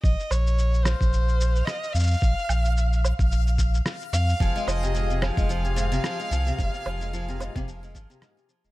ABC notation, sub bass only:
X:1
M:4/4
L:1/16
Q:"Swing 16ths" 1/4=110
K:Fphr
V:1 name="Sub bass" clef=bass
B,,, z B,,,4- B,,, B,,,4- B,,, z2 F,, z | B,,, z B,,,4- B,,, B,,,4- B,,, z2 F,, z | F,,, z F,,,4- F,,, F,,,4- F,,, z2 C,, z | F,,, z F,,,4- F,,, F,,,3 A,,, z4 E,,, |]